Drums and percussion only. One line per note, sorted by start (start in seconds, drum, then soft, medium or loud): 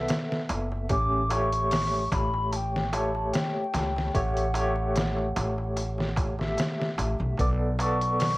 0.08 snare loud
0.08 closed hi-hat medium
0.08 darbuka tek soft
0.32 snare soft
0.49 closed hi-hat medium
0.49 darbuka tek medium
0.72 darbuka tek soft
0.89 kick loud
0.89 closed hi-hat medium
0.89 darbuka tek medium
1.30 closed hi-hat medium
1.30 darbuka tek loud
1.53 closed hi-hat soft
1.53 darbuka tek soft
1.71 snare loud
1.71 open hi-hat medium
1.71 darbuka tek medium
1.93 darbuka tek soft
2.12 kick medium
2.12 closed hi-hat medium
2.12 darbuka tek medium
2.34 darbuka tek soft
2.53 closed hi-hat medium
2.53 darbuka tek soft
2.76 snare soft
2.93 closed hi-hat medium
2.93 darbuka tek medium
3.15 darbuka tek soft
3.33 snare loud
3.33 closed hi-hat medium
3.33 darbuka tek soft
3.74 snare soft
3.74 closed hi-hat medium
3.74 darbuka tek medium
3.96 snare soft
3.96 darbuka tek soft
4.15 kick medium
4.15 closed hi-hat medium
4.15 darbuka tek soft
4.37 closed hi-hat soft
4.54 closed hi-hat medium
4.54 darbuka tek medium
4.76 darbuka tek soft
4.96 snare loud
4.96 closed hi-hat medium
4.96 darbuka tek medium
5.17 darbuka tek soft
5.36 closed hi-hat medium
5.36 darbuka tek loud
5.58 darbuka tek soft
5.76 closed hi-hat medium
5.76 darbuka tek soft
5.98 snare soft
5.98 darbuka tek soft
6.16 kick medium
6.16 closed hi-hat medium
6.16 darbuka tek medium
6.39 snare soft
6.39 darbuka tek soft
6.57 snare loud
6.57 closed hi-hat medium
6.57 darbuka tek soft
6.79 snare soft
6.79 darbuka tek soft
6.98 closed hi-hat medium
6.98 darbuka tek medium
7.20 darbuka tek soft
7.37 kick medium
7.37 closed hi-hat medium
7.37 darbuka tek soft
7.79 closed hi-hat medium
7.79 darbuka tek medium
8.01 closed hi-hat soft
8.01 darbuka tek soft
8.19 snare loud
8.19 open hi-hat medium
8.19 darbuka tek soft